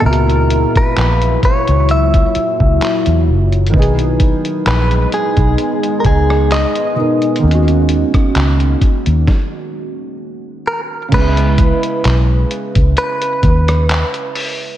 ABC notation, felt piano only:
X:1
M:4/4
L:1/8
Q:"Swing 16ths" 1/4=65
K:C#dor
V:1 name="Felt piano"
[A,,EF]8 | [D,B,DG]6- [D,B,DG] [B,,B,DA] | [D,A,C^EF]4 z4 | [C,G,B,E]8 |]